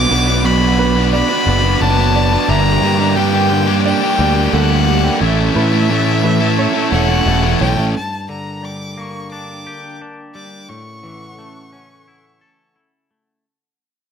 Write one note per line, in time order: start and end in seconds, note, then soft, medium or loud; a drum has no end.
0.00 0.43 B2 medium
0.00 0.43 F#3 medium
0.00 0.11 D4 loud
0.00 0.11 F#4 loud
0.00 0.10 B4 loud
0.00 2.45 B4 medium
0.00 2.46 F#5 medium
0.00 0.47 D6 loud
0.00 5.17 D6 medium
0.10 1.21 B1 medium
0.10 0.28 B3 medium
0.10 0.28 D4 medium
0.10 0.27 F#4 medium
0.10 0.78 B4 medium
0.10 0.25 B4 medium
0.27 0.44 B3 medium
0.27 0.45 D4 medium
0.27 0.44 F#4 medium
0.27 0.45 B4 medium
0.44 0.96 B2 loud
0.44 0.96 F#3 loud
0.44 0.62 B3 loud
0.44 0.62 D4 loud
0.44 0.60 F#4 loud
0.44 0.60 B4 loud
0.44 1.13 B5 loud
0.61 0.78 B3 medium
0.61 0.79 D4 medium
0.61 0.78 F#4 medium
0.61 0.78 B4 medium
0.79 0.97 B3 medium
0.79 0.96 D4 medium
0.79 0.95 F#4 medium
0.79 1.13 B4 medium
0.79 0.94 B4 medium
0.79 muted overdriven electric guitar stroke soft
0.95 1.30 B3 medium
0.95 1.29 D4 medium
0.95 1.29 F#4 medium
0.95 1.28 B4 medium
1.13 1.81 D5 loud
1.13 1.83 B5 loud
1.29 1.45 B3 medium
1.29 1.47 D4 medium
1.29 1.47 F#4 medium
1.29 1.48 B4 medium
1.47 1.74 F#1 loud
1.47 1.80 B3 medium
1.47 1.80 D4 medium
1.47 1.81 F#4 medium
1.47 1.81 B4 medium
1.63 1.81 B3 medium
1.63 1.81 D4 medium
1.63 1.82 F#4 medium
1.63 1.83 B4 medium
1.80 2.36 F#1 medium
1.80 2.32 B2 loud
1.80 2.32 F#3 medium
1.80 1.99 B3 loud
1.80 1.98 D4 loud
1.80 1.97 F#4 loud
1.80 1.96 B4 loud
1.80 2.50 A5 loud
1.98 2.13 B3 medium
1.98 2.14 D4 medium
1.98 2.14 F#4 medium
1.98 2.15 B4 medium
2.14 2.47 B3 medium
2.14 2.47 D4 medium
2.14 2.47 F#4 loud
2.14 2.48 B4 loud
2.14 2.50 D5 medium
2.32 2.49 B3 medium
2.32 2.48 D4 medium
2.32 2.48 F#4 medium
2.32 2.47 B4 loud
2.48 2.76 G1 medium
2.48 3.15 G2 loud
2.48 3.16 D3 loud
2.48 2.80 G3 loud
2.48 5.18 A#3 medium
2.48 2.81 A#3 loud
2.48 2.82 D4 loud
2.48 5.18 G4 medium
2.48 2.82 G4 loud
2.48 3.17 E5 medium
2.48 3.17 A#5 loud
2.82 3.92 G2 medium
2.82 3.00 G3 medium
2.82 2.99 A#3 medium
2.82 2.98 D4 medium
2.82 2.98 G4 medium
2.99 3.16 G3 medium
2.99 3.16 A#3 medium
2.99 3.17 D4 medium
2.99 3.17 G4 medium
3.16 3.68 G2 medium
3.16 3.68 D3 loud
3.16 3.34 G3 loud
3.16 3.34 A#3 loud
3.16 3.33 D4 loud
3.16 3.32 G4 loud
3.16 3.85 G5 loud
3.33 3.50 G3 medium
3.33 3.50 A#3 medium
3.33 3.51 D4 medium
3.33 3.51 G4 medium
3.50 3.70 G3 medium
3.50 3.69 A#3 medium
3.50 3.67 D4 medium
3.50 3.66 G4 medium
3.50 muted overdriven electric guitar stroke soft
3.67 4.02 G3 medium
3.67 4.01 A#3 medium
3.67 4.01 D4 medium
3.67 4.00 G4 medium
3.85 4.53 D5 loud
3.85 4.56 G5 loud
4.01 4.18 G3 medium
4.01 4.18 A#3 medium
4.01 4.19 D4 medium
4.01 4.20 G4 medium
4.19 4.47 D2 medium
4.19 4.52 G3 medium
4.19 4.52 A#3 medium
4.19 4.53 D4 medium
4.19 4.53 G4 medium
4.36 4.53 G3 medium
4.36 4.54 A#3 medium
4.36 4.55 D4 medium
4.36 4.55 G4 medium
4.53 5.08 D2 medium
4.53 5.04 G2 loud
4.53 5.04 D3 loud
4.53 4.71 G3 medium
4.53 4.70 A#3 loud
4.53 4.69 D4 medium
4.53 4.69 G4 loud
4.53 5.21 A4 medium
4.53 5.22 F#5 loud
4.70 4.86 G3 medium
4.70 4.87 A#3 medium
4.70 4.87 D4 medium
4.70 4.88 G4 medium
4.87 5.19 G3 medium
4.87 5.19 A#3 medium
4.87 5.20 D4 medium
4.87 5.20 G4 medium
5.04 5.20 G3 medium
5.04 5.20 A#3 medium
5.04 5.20 D4 medium
5.04 5.19 G4 medium
5.21 5.49 A1 medium
5.21 5.88 A2 loud
5.21 5.89 E3 loud
5.21 5.54 A3 loud
5.21 5.54 C#4 loud
5.21 5.55 E4 loud
5.21 7.92 A4 medium
5.21 5.55 A4 loud
5.21 7.92 E5 medium
5.21 6.89 E5 medium
5.21 7.91 C#6 medium
5.55 6.66 A2 medium
5.55 5.73 A3 medium
5.55 5.73 C#4 medium
5.55 5.72 E4 medium
5.55 5.71 A4 medium
5.55 6.22 B4 medium
5.72 5.89 A3 medium
5.72 5.89 C#4 medium
5.72 5.90 E4 medium
5.72 5.90 A4 medium
5.89 6.40 A2 loud
5.89 6.41 E3 loud
5.89 6.07 A3 medium
5.89 6.07 C#4 loud
5.89 6.06 E4 loud
5.89 6.05 A4 loud
6.06 6.22 A3 medium
6.06 6.22 C#4 medium
6.06 6.22 E4 medium
6.06 6.22 A4 medium
6.23 6.42 A3 medium
6.23 6.42 C#4 medium
6.23 6.40 E4 medium
6.23 6.39 A4 medium
6.23 6.58 B4 medium
6.23 muted overdriven electric guitar stroke soft
6.40 6.75 A3 medium
6.40 6.74 C#4 medium
6.40 6.73 E4 medium
6.40 6.72 A4 medium
6.59 7.26 C#5 loud
6.73 6.90 A3 medium
6.73 6.91 C#4 medium
6.73 6.91 E4 medium
6.73 6.92 A4 medium
6.91 7.20 E1 medium
6.91 7.26 A3 medium
6.91 7.26 C#4 medium
6.91 7.27 E4 medium
6.91 7.27 A4 medium
6.91 7.56 F#5 medium
7.09 7.27 A3 medium
7.09 7.27 C#4 medium
7.09 7.28 E4 medium
7.09 7.28 A4 medium
7.26 7.54 E1 medium
7.26 7.77 A2 loud
7.26 7.78 E3 loud
7.26 7.43 A3 loud
7.26 7.43 C#4 medium
7.26 7.42 E4 loud
7.26 7.42 A4 loud
7.43 7.59 A3 medium
7.43 7.60 C#4 medium
7.43 7.61 E4 medium
7.43 7.62 A4 medium
7.61 7.76 B1 medium
7.61 7.92 A3 medium
7.61 7.93 C#4 medium
7.61 7.93 E4 medium
7.61 7.94 A4 medium
7.61 7.95 C#5 medium
7.61 7.93 G5 loud
7.77 7.93 A1 medium
7.77 7.94 A3 medium
7.77 7.94 C#4 medium
7.77 7.93 E4 medium
7.77 7.92 A4 medium
7.94 9.66 G2 soft
7.94 10.67 D4 medium
7.94 10.67 A#4 medium
7.94 10.67 G5 medium
7.94 8.27 A5 medium
8.29 10.01 D3 soft
8.29 8.66 A#5 medium
8.63 10.34 G3 soft
8.63 9.01 D6 medium
8.98 10.69 A#3 soft
8.98 9.31 C#6 medium
9.32 10.00 D4 soft
9.32 9.96 D6 medium
9.67 10.70 G4 soft
10.01 10.70 D4 soft
10.35 10.69 G3 soft
10.35 10.70 D6 medium
10.69 12.42 A2 soft
10.69 13.42 C#4 medium
10.69 13.43 A4 medium
10.69 13.43 F#5 medium
10.69 12.76 C#6 medium
11.04 12.76 E3 soft
11.39 13.09 A3 soft
11.73 13.45 C#4 soft
12.08 12.75 E4 soft
12.41 13.45 A4 soft
12.76 13.45 E4 soft
13.11 13.45 A3 soft